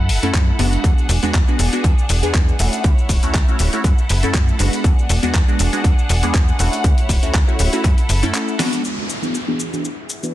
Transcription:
Already playing: fm bass F#2, violin section E4 A4 F#5
0.09 fm bass F#1, open hi-hat
0.22 fm bass F#2, analog polysynth A3 C#4 E4 A4, closed hi-hat, tambourine
0.33 fm bass F#2, kick, clap, closed hi-hat, tambourine
0.48 tambourine
0.59 fm bass F#1, analog polysynth G#3 B3 D4 F#4, open hi-hat
0.73 closed hi-hat, tambourine
0.84 fm bass E2, violin section D4 G#4, kick, closed hi-hat, cabasa
0.98 tambourine, cabasa
1.09 fm bass E1, open hi-hat, cabasa
1.22 fm bass E2, analog polysynth G#3 B3 D4 F#4, closed hi-hat, tambourine, cabasa
1.34 fm bass E2, kick, clap, closed hi-hat, cabasa
1.48 analog polysynth G#3 B3 D4 F#4, tambourine, cabasa
1.59 fm bass E1, open hi-hat, cabasa
1.72 analog polysynth G#3 B3 D4 F#4, closed hi-hat, tambourine, cabasa
1.83 fm bass E2, kick, closed hi-hat, tambourine, cabasa
1.98 tambourine, cabasa
2.09 fm bass E1, open hi-hat, cabasa
2.23 fm bass E2, analog polysynth G#3 B3 D4 G#4, closed hi-hat, tambourine, cabasa
2.34 fm bass E2, kick, clap, closed hi-hat, cabasa
2.48 tambourine, cabasa
2.59 fm bass E1, analog polysynth A3 C#4 E4 F#4, open hi-hat, cabasa
2.73 closed hi-hat, tambourine, cabasa
2.83 fm bass D2, violin section E4 C#5, kick, closed hi-hat, tambourine, cabasa
2.98 tambourine, cabasa
3.09 fm bass D1, kick, open hi-hat, cabasa
3.22 fm bass D2, analog polysynth A3 C#4 E4 F#4, closed hi-hat, tambourine, cabasa
3.34 fm bass D2, kick, clap, closed hi-hat, cabasa
3.48 analog polysynth A3 C#4 E4 F#4, tambourine, cabasa
3.59 fm bass D1, open hi-hat, cabasa
3.73 analog polysynth A3 C#4 E4 F#4, closed hi-hat, tambourine, cabasa
3.84 fm bass F#2, violin section E4 A4 F#5, kick, closed hi-hat, tambourine, cabasa
3.98 tambourine, cabasa
4.09 fm bass F#1, open hi-hat, cabasa
4.23 fm bass F#2, analog polysynth A3 C#4 E4 A4, closed hi-hat, tambourine, cabasa
4.34 fm bass F#2, kick, clap, closed hi-hat, cabasa
4.48 tambourine, cabasa
4.59 fm bass F#1, analog polysynth G#3 B3 D4 F#4, open hi-hat, cabasa
4.73 closed hi-hat, tambourine, cabasa
4.84 fm bass E2, violin section D4 G#4, kick, closed hi-hat, cabasa
4.99 tambourine, cabasa
5.09 fm bass E1, open hi-hat, cabasa
5.23 fm bass E2, analog polysynth G#3 B3 D4 F#4, closed hi-hat, tambourine, cabasa
5.34 fm bass E2, kick, clap, closed hi-hat, cabasa
5.48 analog polysynth G#3 B3 D4 F#4, tambourine, cabasa
5.59 fm bass E1, open hi-hat, cabasa
5.72 analog polysynth G#3 B3 D4 F#4, closed hi-hat, tambourine, cabasa
5.84 fm bass E2, kick, closed hi-hat, tambourine, cabasa
5.98 tambourine, cabasa
6.09 fm bass E1, open hi-hat, cabasa
6.22 fm bass E2, analog polysynth G#3 B3 D4 G#4, closed hi-hat, tambourine, cabasa
6.34 fm bass E2, kick, clap, closed hi-hat, tambourine, cabasa
6.48 tambourine, cabasa
6.59 fm bass E1, analog polysynth A3 C#4 E4 F#4, open hi-hat, cabasa
6.72 closed hi-hat, tambourine, cabasa
6.84 fm bass D2, violin section E4 C#5, kick, closed hi-hat, cabasa
6.98 closed hi-hat, tambourine, cabasa
7.09 fm bass D1, kick, open hi-hat, cabasa
7.22 fm bass D2, analog polysynth A3 C#4 E4 F#4, closed hi-hat, tambourine, cabasa
7.34 fm bass D2, kick, clap, closed hi-hat, cabasa
7.47 analog polysynth A3 C#4 E4 F#4, tambourine, cabasa
7.59 fm bass D1, open hi-hat, cabasa
7.72 analog polysynth A3 C#4 E4 F#4, closed hi-hat, tambourine, cabasa
7.84 fm bass F#2, violin section A4, kick, clap, closed hi-hat, cabasa
7.98 closed hi-hat, tambourine, cabasa
8.09 fm bass F#1, open hi-hat, cabasa
8.22 fm bass F#2, analog polysynth A3 C#4 E4 A4, closed hi-hat, tambourine, cabasa
8.34 clap, closed hi-hat, cabasa
8.48 tambourine, cabasa
8.59 analog polysynth G#3 B3 D4 F#4, snare, open hi-hat, cabasa
8.73 closed hi-hat, tambourine, cabasa
8.84 violin section E4 G#4 E5 F#5, downlifter, cabasa
9.10 cabasa
9.22 analog polysynth E3 B3 D4 F#4 G#4, cabasa
9.35 cabasa
9.48 analog polysynth E3 B3 D4 F#4 G#4
9.60 cabasa
9.73 analog polysynth E3 B3 D4 F#4 G#4, cabasa
9.85 cabasa
10.10 cabasa
10.23 analog polysynth E3 B3 D4 F#4 B4, cabasa

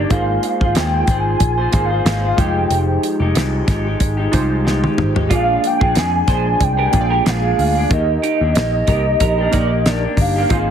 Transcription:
Already playing: synth keys A#3 D#4 G4 A#4, clean electric guitar G4, soft synth lead D5
0.00 clean electric guitar A#3 D4
0.09 picked electric bass G#1, clean electric guitar G#3 A#3 F4 G#4, synth keys A#3 D#4 F4 G#4 C5, soft synth lead F5, kick, closed hi-hat
0.13 clean electric guitar C5
0.43 soft synth lead F5, closed hi-hat
0.60 picked electric bass G#1, clean electric guitar F4 G#4 C5, kick
0.75 picked electric bass D#2, clean electric guitar G#3 A#3 F4 G#4 C5, soft synth lead G5, snare, closed hi-hat
1.07 picked electric bass G#1, clean electric guitar A#3 F4 G#4 C5, kick, closed hi-hat
1.20 soft synth lead G#5
1.40 picked electric bass A#1, kick, closed hi-hat
1.58 clean electric guitar F4 G#4 C5
1.72 picked electric bass G#1, synth keys A#3 D#4 F4 G#4 C5, clean electric guitar A#3 F4 G#4, kick, closed hi-hat
1.76 clean electric guitar C5
1.85 soft synth lead F5
1.90 clean electric guitar G#4 C5
1.94 clean electric guitar F4
2.05 picked electric bass G#1, clean electric guitar G#3 A#3 F4 G#4 C5, soft synth lead F5, snare, closed hi-hat
2.23 clean electric guitar F4 G#4 C5
2.36 picked electric bass F1, clean electric guitar F3 G#3 D#4 G4, synth keys G#3 D#4 F4 G4 C5, soft synth lead G5, kick, closed hi-hat
2.70 picked electric bass F1, closed hi-hat
3.03 closed hi-hat
3.20 picked electric bass F1, clean electric guitar G#3 D#4 G4
3.35 picked electric bass C2, clean electric guitar F3 G#3 D#4 G4, snare, closed hi-hat
3.66 picked electric bass G#1, clean electric guitar F3 G#3 D#4, kick, snare, closed hi-hat
3.71 clean electric guitar G4
3.84 clean electric guitar D#4 G4
3.88 clean electric guitar G#3
4.00 picked electric bass G#1, kick, closed hi-hat
4.17 clean electric guitar D#4 G4
4.21 clean electric guitar G#3
4.31 picked electric bass C2, clean electric guitar F3 G#3 D#4, synth keys G#3 D#4 F4 G4 C5, kick, closed hi-hat
4.36 clean electric guitar G4
4.65 clean electric guitar F3 G#3 D#4 G4, snare
4.82 clean electric guitar G#3 D#4 G4, high tom
4.98 picked electric bass G#1, mid tom
5.15 clean electric guitar G#3 D#4 G4, floor tom
5.29 picked electric bass A#1, clean electric guitar A#2 F3 G#3 D4 F4 G#4, synth keys A#3 D4 F4 G#4 D5, kick, closed hi-hat
5.34 soft synth lead F5
5.64 soft synth lead G5, closed hi-hat
5.80 picked electric bass A#1, clean electric guitar D4 F4 G#4, kick
5.84 clean electric guitar G#3
5.95 picked electric bass F2, clean electric guitar A#2 F3 G#3 D4 G#4, soft synth lead G#5, snare, closed hi-hat
6.27 picked electric bass A#1, clean electric guitar F3 G#3 D4 G#4 C5, kick, snare, closed hi-hat
6.60 picked electric bass C2, soft synth lead G5, kick, closed hi-hat
6.77 clean electric guitar D4 G4 G#4 A#4
6.81 clean electric guitar G#3
6.92 picked electric bass A#1, clean electric guitar F3 G#3 D4, synth keys A#3 D4 F4 G#4 C5, kick, closed hi-hat
6.96 clean electric guitar G#4
7.01 synth keys D5
7.10 clean electric guitar G4 A#4
7.25 picked electric bass A#1, clean electric guitar A#2 F3 G#3 D4 F4 G#4, snare, closed hi-hat
7.29 soft synth lead F5
7.42 clean electric guitar G#3 D4 G#4
7.59 picked electric bass D2, open hi-hat
7.75 clean electric guitar G#3 D4 G#4
7.89 picked electric bass D#2, clean electric guitar D#3 A#3 G4, synth keys A#3 D#4 G4 A#4, soft synth lead D#5, kick, closed hi-hat
8.23 clean electric guitar D#4 G4, closed hi-hat
8.41 picked electric bass D#2, clean electric guitar D4 G4
8.45 clean electric guitar A#3
8.55 picked electric bass A#1, clean electric guitar D#3 A#3 G4, snare, closed hi-hat
8.87 picked electric bass C2, clean electric guitar D#3 A#3 G4 A#4, kick, closed hi-hat
8.92 clean electric guitar G4
9.20 picked electric bass A#1, clean electric guitar G4 A#4, kick, closed hi-hat
9.38 clean electric guitar D4 G4
9.42 clean electric guitar A#3
9.51 picked electric bass A#1, clean electric guitar D#3 A#3 A#4 D5, synth keys A#3 D#4 G4 A#4, kick, closed hi-hat
9.57 clean electric guitar G4
9.86 clean electric guitar D#3 A#3 D4 G4, soft synth lead D5, snare, closed hi-hat
10.04 clean electric guitar A#3 D4 G4
10.17 picked electric bass G1, soft synth lead F5, kick, open hi-hat
10.36 clean electric guitar A#3 D4 G4
10.49 picked electric bass G#1, clean electric guitar G#3 A#3 C4 F4 G#4, synth keys A#3 D#4 F4 G#4 C5, kick, closed hi-hat
10.54 clean electric guitar C5

